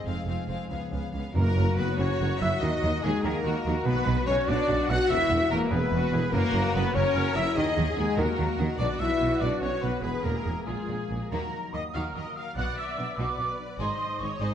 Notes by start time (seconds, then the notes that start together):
Already playing: G#3 C4 G#4 C5
0.05 F1 F2 C4 G#4 F5
0.26 F1 F2 C4 F4 G#4 F5
0.48 F1 F2 C4 G#4 C5 F5
0.70 C#2 C#3 F3 B3 G#4 F5
0.92 C#2 B3 F4 G#4 F5
1.13 C#2 B3 G#4 B4 F5
1.34 F#1 F#2 A#3 F#4 A#4
1.46 C#3
1.56 F#1 F#2 C#4
1.69 F#4
1.77 F#1 F#2 B3 A#4 B4
1.90 C#5
1.98 F#1 F#2 C#4 C#5 F#5
2.11 A#5
2.20 F#1 F#2 F#5
2.32 C#5
2.40 F#1 F#2 E4 A#4 E5
2.54 F#4
2.62 D#2 D#3 D#4 D#5
2.75 A#3
2.82 D#2 D#3 D#4
2.95 F#4
3.03 D#2 D#3 G#3 G#4 A#4
3.15 D#5
3.23 D#2 D#3 A#3 G#4 A#4 F#5
3.36 A#5
3.44 D#2 D#3 F#4 F#5
3.56 D#5
3.65 D#2 D#3 F#4 A#4
3.78 F#4
3.86 B1 B2 B3 B4
3.98 F#3
4.06 B1 B2 D4
4.27 B1 B2 C#4 C#5
4.38 F#4
4.47 B1 B2 D4 D5 F#5
4.59 D6
4.68 B1 B2 F#5
4.89 B1 B2 F#4 F#5
5.01 D4
5.10 E1 E2 E4 E5
5.21 B2
5.30 E1 E2 B3
5.41 G#4
5.51 E1 E2 A#3 A#4 E5
5.62 B4
5.71 E1 E2 B3 G#4 B4 G#5
5.82 E6
5.91 E1 E2 F#4 G#5
6.03 B4
6.13 E1 E2 G#4 E5
6.23 G#4
6.31 F#1 F#2 A#3 F#4 A#4
6.44 C#3
6.53 F#1 F#2 F#3
6.64 F#4
6.74 F#1 F#2 B3 B4 C#5
6.83 F#4
6.94 F#1 F#2 C#4 A#4 C#5 F#5
7.04 C#6
7.15 F#1 F#2 F#5
7.26 F#4
7.35 F#1 F#2 E4 C#5 E5
7.46 F#4
7.56 D#2 D#3 D#4 G#4 D#5
7.67 D#4
7.77 D#2 D#3 F#3
7.87 F#4
7.96 D#2 D#3 G#3 G#4 D#5
8.07 F#4
8.17 D#2 D#3 A#3 F#4 A#4 F#5
8.27 D#6
8.37 D#2 D#3 F#5
8.48 F#4
8.58 D#2 D#3 D#5
8.69 F#4
8.78 B1 B2 D4 F#4 D5
8.90 B3
8.99 B1 B2 F#3 E4 E5
9.10 F#4
9.20 B1 B2 D5
9.31 F#4
9.40 B1 B2 D4 D5 F#5
9.61 B1 B2 C#4 C#5 F#5
9.82 B1 B2 B3 B4 D5
9.93 F#4
10.03 E1 E2 E3 B3 G#4 B4
10.14 G#3
10.23 E1 E2 A#3 E4 A#4
10.35 E5
10.45 E1 E2 G#4
10.57 E5
10.66 A#1 A#2 G#3 F4 G#4
10.79 F3
10.88 A#1 A#2 A#3
11.00 F4
11.09 A#1 A#2 D5
11.21 A#4
11.31 D#2 D#3 F#3 A#3 F#4 A#4 A#5
11.53 F#4
11.73 D#2 D#3 A#3 D#4 D#5 D#6
11.94 D#2 D#3 A#3 F#4 A#4 F5 F6
12.14 D#2 D#3 A#3 F4 F#4 D#5 D#6
12.35 F#4 F5 F6
12.56 B1 B2 B3 F#4 D5 F#5 F#6
12.76 D4 E5 E6
12.97 B1 B2 F#3 B3 D4
13.17 B1 B2 B3 D4 F#4 B4 D5 D6
13.38 B1 B2 B3 F#4
13.59 D4
13.79 G#1 G#2 G#3 D#4 G#4 C5 D#5 C6
14.02 D#4
14.20 G#1 G#2 D#3 C4 D#4 C#5 C#6
14.40 G#1 G#2 D#4 G#4 C5 D#5 D#6